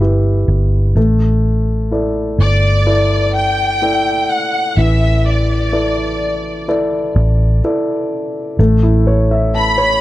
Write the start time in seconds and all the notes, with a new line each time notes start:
Already playing: G1 G3
0.00 E4 G4 B4
0.48 G1
0.95 A1 A3
1.91 E4 A4 D5
2.38 G1 D5
2.86 E4 A4 D5
3.35 G5
3.82 E4 A4 D5
4.31 F#5
4.77 A1 E3 E5
5.26 D5
5.72 E4 A4 D5
6.68 E4 A4 D5
7.16 A1
7.64 E4 A4 D5
8.59 A1 A3
8.83 E4
9.07 C#5
9.31 E5
9.55 A5 B5
9.78 C#5